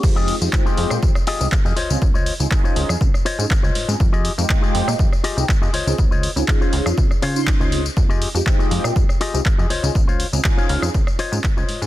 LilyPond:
<<
  \new Staff \with { instrumentName = "Clean electric guitar" } { \time 4/4 \key f \minor \tempo 4 = 121 r16 <f' g' aes' ees''>16 r8. <f' g' aes' c''>8. r8 <f' g' aes' ees''>8 r16 <f' g' aes' ees''>16 <f' c'' des'' ees''>8 | r16 <f' c'' des'' ees''>16 r8. <f' c'' des'' ees''>8. r8 <f' c'' des'' ees''>8 r16 <f' c'' des'' ees''>8 r16 | r16 <f' g' aes' ees''>16 r8. <f' g' aes' ees''>8. r8 <f' g' aes' ees''>8 r16 <f' g' aes' ees''>16 <f' c'' des'' ees''>8 | r16 <f' c'' des'' ees''>16 r8. <f' c'' des'' f''>8. r8 <f' c'' des'' f''>8 r16 <f' c'' des'' ees''>8 r16 |
r16 <f' g' aes' ees''>16 r8. <f' g' aes' ees''>8. r8 <f' g' aes' ees''>8 r16 <f' g' aes' ees''>16 <f' c'' des'' ees''>8 | r16 <f' c'' des'' f''>16 r8. <f' c'' des'' f''>8. r8 <f' c'' des'' ees''>8 r16 <f' c'' des'' ees''>8 r16 | }
  \new Staff \with { instrumentName = "Analog polysynth" } { \time 4/4 \key f \minor <aes c' ees' f' g'>8. <aes c' ees' f' g'>16 c'4 aes16 r8 <aes c' ees' f' g'>16 r8. <c' des' ees' f' aes'>16 | r8. <c' des' ees' f' aes'>16 <des' ees' f' aes'>4 <c' des' ees' f' aes'>16 r8 <c' des' ees' f' aes'>16 r8. <c' des' ees' f' aes'>16 | r8. <aes c' ees' f' g'>16 r4 <aes c' ees' f' g'>16 r8 <aes c' ees' f' g'>16 r8. <c' des' ees' f' aes'>16 | r8. <c' des' ees' f' aes'>16 <f' aes'>4 <c' des' ees'>16 r8 <des' ees' f' c'''>8. <c' des' ees' f' aes'>16 r16 |
r8. <aes c' ees' f' g'>16 <aes c' ees' f' g''>4 <aes c' ees' f' g'>16 r8 <aes c' ees' f' g'>16 r8. <c' des' ees' f' aes'>16 | r8. <c' des' ees' f' aes'>16 <des' ees' f' aes'>4 r8. <c' des' ees' f' aes'>16 r8. <c' des' ees' f' aes'>16 | }
  \new Staff \with { instrumentName = "Analog synth bass" } { \clef bass \time 4/4 \key f \minor f,8 r16 f,16 r8 f,16 bes,16 f,16 r8 c,16 r16 f,16 des,16 des,16 | des,8 r16 des,16 r8 des,16 f,16 des,16 r8 aes,16 r16 des,16 aes,16 aes,16 | f,8 r16 f,16 r8 f,16 bes,16 f,16 r8 c,16 r16 f,16 des,16 des,16 | des,8 r16 des,16 r8 des,16 f,16 des,16 des16 des8 r16 des,8 r16 |
f,8 r16 f,16 r8 f,16 bes,16 f,16 r8 c,16 r16 f,16 des,16 des,16 | des,8 r16 des,16 r8 des,16 f,16 des,16 r8 aes,16 r16 des,16 aes,16 aes,16 | }
  \new DrumStaff \with { instrumentName = "Drums" } \drummode { \time 4/4 <cymc bd tamb>16 tamb16 hho16 tamb16 <hc bd tamb>16 tamb16 hho16 <ss tamb>16 <bd tamb>16 <ss tamb>16 hho16 tamb16 <hc bd tamb>16 tamb16 hho16 tamb16 | <bd tamb>16 tamb16 hho16 tamb16 <hc bd tamb>16 tamb16 hho16 <ss tamb>16 <bd tamb>16 <ss tamb>16 hho16 tamb16 <hc bd tamb>16 tamb16 hho16 tamb16 | <bd tamb>16 tamb16 hho16 tamb16 <hc bd>16 tamb16 hho16 <ss tamb>16 <bd tamb>16 <ss tamb>16 hho16 tamb16 <hc bd tamb>16 tamb16 hho16 tamb16 | <bd tamb>16 tamb16 hho16 tamb16 <hc bd tamb>16 tamb16 hho16 <ss tamb>16 <bd tamb>16 <ss tamb>16 hho16 tamb16 <hc bd tamb>16 tamb16 hho16 tamb16 |
<bd tamb>16 tamb16 hho16 tamb16 <hc bd tamb>16 tamb16 hho16 <ss tamb>16 <bd tamb>16 <ss tamb>16 hho16 tamb16 <hc bd tamb>16 tamb16 hho16 tamb16 | <bd tamb>16 tamb16 hho16 tamb16 <hc bd tamb>16 tamb16 hho16 <ss tamb>16 <bd tamb>16 <ss tamb>16 hho16 tamb16 <hc bd tamb>16 tamb16 hho16 tamb16 | }
>>